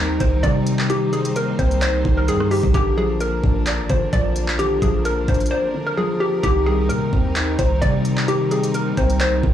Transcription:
0.00 0.19 D#2 loud
0.00 0.19 D#3 medium
0.00 0.42 G3 medium
0.00 2.71 G3 medium
0.00 0.67 A#3 medium
0.00 0.90 C4 medium
0.00 2.71 C4 medium
0.00 1.13 D#4 loud
0.00 2.71 D#4 medium
0.00 0.16 A#4 medium
0.00 0.88 A#4 medium
0.20 0.43 C2 loud
0.20 0.88 D#3 medium
0.20 0.42 C5 medium
0.20 kick loud
0.20 closed hi-hat medium
0.43 1.55 C3 loud
0.43 1.11 G3 medium
0.43 0.87 D5 loud
0.43 kick loud
0.43 closed hi-hat medium
0.67 closed hi-hat medium
0.79 clap loud
0.90 2.03 D#3 medium
0.90 1.11 G4 loud
0.90 2.73 C5 medium
0.90 closed hi-hat medium
1.13 2.27 G3 medium
1.13 1.34 G#4 medium
1.13 closed hi-hat medium
1.25 closed hi-hat medium
1.36 2.51 A#3 medium
1.36 1.57 A#4 medium
1.36 closed hi-hat medium
1.59 2.03 C2 loud
1.59 2.74 C4 medium
1.59 1.80 C5 medium
1.59 kick medium
1.59 closed hi-hat medium
1.71 closed hi-hat medium
1.82 2.74 D#4 loud
1.82 2.15 C5 loud
1.82 clap loud
1.82 closed hi-hat medium
2.05 2.30 C2 loud
2.05 2.74 D#3 medium
2.05 kick loud
2.17 2.27 A#4 medium
2.28 2.62 G2 loud
2.28 2.74 G3 medium
2.28 2.49 G#4 loud
2.28 closed hi-hat medium
2.40 cross-stick medium
2.51 2.72 G4 medium
2.51 open hi-hat medium
2.63 2.74 C2 loud
2.63 kick medium
2.74 3.41 A#1 loud
2.74 3.88 D3 medium
2.74 6.40 F3 medium
2.74 6.40 A#3 medium
2.74 6.40 D4 medium
2.74 2.95 G4 loud
2.74 9.54 A#4 medium
2.74 kick loud
2.74 closed hi-hat medium
2.97 4.11 F3 medium
2.97 3.19 G#4 medium
3.20 4.36 A#3 medium
3.20 3.86 A#4 medium
3.20 closed hi-hat medium
3.44 3.80 A#1 loud
3.44 4.59 D4 medium
3.44 kick medium
3.67 4.82 D5 loud
3.67 clap loud
3.67 closed hi-hat medium
3.79 3.89 G#1 loud
3.90 4.12 A#2 loud
3.90 4.57 D3 medium
3.90 4.11 C5 medium
3.90 kick loud
3.90 closed hi-hat medium
4.13 4.79 A#1 loud
4.13 4.80 F3 medium
4.13 4.56 D5 loud
4.13 kick loud
4.13 closed hi-hat medium
4.36 closed hi-hat medium
4.48 clap medium
4.59 5.73 D3 medium
4.59 4.80 G4 loud
4.59 closed hi-hat medium
4.82 5.26 A#1 loud
4.82 5.96 F3 medium
4.82 5.03 G#4 medium
4.82 kick medium
4.82 closed hi-hat medium
5.05 6.20 A#3 medium
5.05 5.26 A#4 medium
5.05 closed hi-hat medium
5.28 5.51 A#1 loud
5.28 6.44 D4 medium
5.28 5.49 C5 medium
5.28 kick medium
5.28 closed hi-hat soft
5.34 closed hi-hat medium
5.40 closed hi-hat medium
5.46 closed hi-hat medium
5.51 5.84 C5 medium
5.51 6.44 D5 loud
5.74 6.44 D3 medium
5.87 5.96 A#4 medium
5.97 6.44 F3 medium
5.97 6.18 G#4 medium
6.20 6.41 G4 medium
6.43 6.91 C2 loud
6.43 7.57 D#3 medium
6.43 9.54 G3 medium
6.43 9.54 C4 medium
6.43 9.54 D#4 medium
6.43 6.64 G4 loud
6.43 kick loud
6.43 closed hi-hat medium
6.66 7.81 G3 medium
6.66 6.88 G#4 medium
6.89 7.12 C3 loud
6.89 8.05 A#3 medium
6.89 7.55 A#4 medium
6.89 closed hi-hat medium
7.13 7.57 D#2 loud
7.13 8.28 C4 medium
7.13 kick medium
7.36 8.51 D#4 loud
7.36 clap loud
7.36 closed hi-hat medium
7.59 7.81 C2 loud
7.59 8.27 D#3 medium
7.59 7.80 C5 medium
7.59 kick loud
7.59 closed hi-hat medium
7.82 8.93 C3 loud
7.82 8.50 G3 medium
7.82 8.25 D5 loud
7.82 kick loud
7.82 closed hi-hat medium
8.05 closed hi-hat medium
8.17 clap loud
8.28 9.42 D#3 loud
8.28 8.49 G4 loud
8.28 closed hi-hat medium
8.51 9.54 G3 medium
8.51 8.72 G#4 medium
8.51 closed hi-hat soft
8.63 closed hi-hat medium
8.74 9.54 A#3 medium
8.74 8.96 A#4 medium
8.74 closed hi-hat medium
8.97 9.42 C2 loud
8.97 9.54 C4 medium
8.97 9.18 C5 medium
8.97 kick medium
8.97 closed hi-hat medium
9.10 closed hi-hat medium
9.20 9.54 D#4 loud
9.20 9.54 C5 loud
9.20 clap loud
9.20 closed hi-hat medium
9.43 9.54 C2 loud
9.43 9.54 D#3 medium
9.43 kick loud

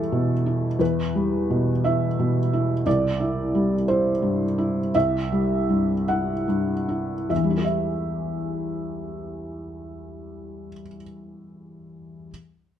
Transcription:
0.00 0.76 E2 soft
0.00 0.82 G3 soft
0.00 0.46 E4 soft
0.00 0.76 A4 medium
0.00 0.82 E5 medium
0.12 0.66 B2 soft
0.46 1.00 E4 soft
0.79 2.81 E2 soft
0.79 1.80 B4 soft
1.15 1.71 G3 soft
1.50 2.05 B2 soft
1.84 2.39 E4 soft
1.84 2.82 E5 soft
2.19 2.73 B2 soft
2.53 2.86 E4 soft
2.86 4.90 C2 soft
2.86 3.85 D5 medium
3.20 3.75 E4 soft
3.55 4.09 G3 soft
3.88 4.44 E4 soft
3.88 4.90 C5 medium
4.22 4.79 G2 soft
4.58 5.16 E4 soft
4.95 7.27 C2 soft
4.95 6.04 E5 medium
5.32 5.92 G3 soft
5.69 6.31 G2 soft
6.08 6.72 E4 soft
6.08 6.45 F#5 soft
6.48 7.14 G2 soft
6.88 7.30 E4 soft
7.29 10.66 E2 soft
7.29 7.63 E5 soft
7.36 10.73 E3 soft
7.44 10.80 G3 soft
7.50 10.87 E4 soft
7.58 10.94 G4 soft
7.64 11.01 E5 soft

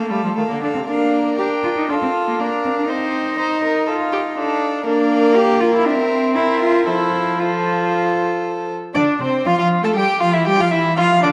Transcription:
0.00 0.12 A3 soft
0.00 0.12 A#3 soft
0.00 0.10 A4 soft
0.00 0.10 F5 soft
0.10 0.24 G3 soft
0.10 0.24 A3 soft
0.10 0.36 A4 soft
0.10 0.35 F5 soft
0.23 0.29 F3 soft
0.23 0.35 G3 soft
0.36 0.42 D#3 soft
0.36 0.49 A3 medium
0.36 0.62 A4 soft
0.36 0.61 F5 soft
0.49 0.78 D3 soft
0.49 0.61 A#3 soft
0.62 0.67 D4 medium
0.62 0.88 A4 soft
0.62 0.88 F5 soft
0.74 0.88 C3 soft
0.74 0.80 C4 soft
0.87 1.41 A#3 medium
0.87 1.37 D4 medium
0.87 1.86 A#4 soft
0.87 1.35 F5 soft
1.38 1.90 D4 soft
1.38 1.46 G4 medium
1.38 1.92 G5 soft
1.64 1.69 F4 medium
1.77 1.89 D#4 medium
1.89 1.94 D4 medium
1.89 2.41 F4 soft
1.89 2.41 A4 soft
1.89 2.40 F5 soft
2.02 2.10 C4 medium
2.28 2.39 A#3 soft
2.39 2.48 A#3 medium
2.39 2.89 D4 soft
2.39 2.91 A#4 soft
2.39 2.92 F5 soft
2.65 2.70 C4 medium
2.78 2.89 D4 medium
2.89 3.38 C4 medium
2.89 4.59 D#4 medium
2.89 3.38 C5 soft
2.89 3.91 D#5 medium
3.38 3.88 D#4 soft
3.38 3.63 C5 soft
3.64 3.86 A#4 soft
3.87 4.37 F4 medium
3.87 3.95 A4 soft
3.87 4.37 F5 soft
4.13 4.21 G4 medium
4.37 4.86 D4 medium
4.37 4.85 A4 medium
4.37 4.86 F5 soft
4.86 5.88 A#3 medium
4.86 5.37 D4 medium
4.86 5.82 A#4 medium
4.86 5.88 F5 medium
5.36 5.62 G4 medium
5.60 5.73 F4 medium
5.74 5.87 E4 medium
5.85 6.89 C4 medium
5.85 5.97 D4 medium
5.85 6.35 A#4 medium
5.85 6.36 E5 medium
5.98 6.37 C4 medium
6.35 6.60 E4 medium
6.35 6.88 A#4 medium
6.35 6.88 E5 medium
6.60 6.86 F4 medium
6.86 8.75 F3 medium
6.86 7.41 E4 medium
6.86 7.39 A4 soft
6.86 7.39 C5 soft
7.39 8.70 F4 medium
7.39 8.72 A4 medium
7.39 8.73 C5 soft
8.95 9.03 D3 medium
8.95 9.19 D4 medium
8.95 9.22 D4 medium
8.95 9.03 D5 medium
9.20 9.28 C3 soft
9.20 9.48 C4 medium
9.20 9.46 C5 medium
9.45 9.51 F3 medium
9.45 9.58 F4 medium
9.45 9.59 F5 medium
9.58 9.83 F3 medium
9.58 9.85 F4 medium
9.58 9.67 F4 medium
9.58 9.67 F5 medium
9.83 9.95 A3 medium
9.83 9.98 A4 medium
9.83 9.95 A4 medium
9.83 9.89 A5 medium
9.95 10.03 G3 medium
9.95 10.22 G4 medium
9.95 10.21 G4 medium
9.95 10.21 G5 medium
10.21 10.36 F3 medium
10.21 10.35 F4 medium
10.21 10.36 F4 medium
10.21 10.35 F5 medium
10.34 10.48 E3 medium
10.34 10.48 E4 medium
10.34 10.47 E4 medium
10.34 10.46 E5 medium
10.46 10.61 G3 medium
10.46 10.58 G4 medium
10.46 10.62 G4 medium
10.46 10.62 G5 medium
10.58 10.74 F3 medium
10.58 10.71 F4 soft
10.58 10.72 F4 medium
10.58 10.72 F5 medium
10.71 10.99 E3 medium
10.71 10.80 E4 medium
10.71 10.97 E4 medium
10.71 10.97 E5 medium
10.97 11.24 F3 medium
10.97 11.05 F4 medium
10.97 11.22 F4 medium
10.97 11.22 F5 medium
11.23 11.32 D3 medium
11.23 11.32 D4 medium
11.23 11.28 D4 medium
11.23 11.28 D5 medium

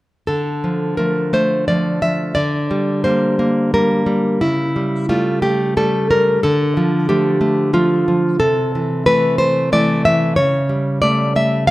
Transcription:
0.27 2.34 D3 soft
0.27 0.95 A4 medium
0.64 0.97 F3 soft
0.97 1.68 F3 soft
0.97 1.32 A3 soft
0.97 1.32 A#4 medium
1.33 1.67 A3 soft
1.33 1.67 C5 medium
1.68 2.02 F3 soft
1.68 2.33 A3 soft
1.68 2.01 D5 medium
2.02 2.37 F3 soft
2.02 2.35 E5 medium
2.35 4.39 D3 soft
2.35 3.03 D5 medium
2.71 3.04 G3 soft
3.04 3.73 G3 soft
3.04 3.38 A#3 soft
3.04 3.71 C5 medium
3.39 3.73 A#3 soft
3.74 4.05 G3 soft
3.74 4.39 A#3 soft
3.74 4.40 A#4 medium
4.06 4.42 G3 soft
4.41 6.38 C#3 soft
4.41 5.07 E4 medium
4.76 5.08 G3 soft
5.09 5.76 G3 soft
5.09 5.42 A3 soft
5.09 5.42 F4 medium
5.42 5.76 A3 soft
5.42 5.75 G4 medium
5.77 6.09 G3 soft
5.77 6.39 A3 soft
5.77 6.08 A4 medium
6.11 6.43 G3 soft
6.11 6.42 A#4 medium
6.43 8.37 D3 medium
6.43 7.06 A4 medium
6.77 7.08 F3 soft
7.09 7.72 F3 soft
7.09 7.40 A3 soft
7.09 7.72 G4 medium
7.41 7.73 A3 soft
7.73 8.07 F3 soft
7.73 8.37 A3 soft
7.73 8.37 F4 medium
8.08 8.39 F3 soft
8.40 10.33 C3 medium
8.40 9.03 A4 medium
8.75 9.06 E3 soft
9.06 9.71 E3 soft
9.06 9.38 A3 soft
9.06 9.38 B4 medium
9.38 9.72 A3 soft
9.38 9.70 C5 medium
9.72 10.05 E3 soft
9.72 10.34 A3 soft
9.72 10.04 D5 medium
10.05 10.38 E3 soft
10.05 10.36 E5 medium
10.36 11.71 C#3 medium
10.36 10.99 C#5 medium
10.69 11.01 G3 soft
11.02 11.67 G3 soft
11.02 11.35 A3 soft
11.02 11.34 D5 medium
11.36 11.67 A3 soft
11.36 11.67 E5 medium
11.67 11.71 F5 medium

